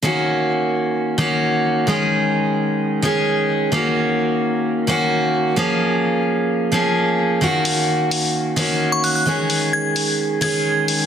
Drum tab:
HH |--------|--------|--------|--------|

HH |-o-o-o-o|-o-o-o-o|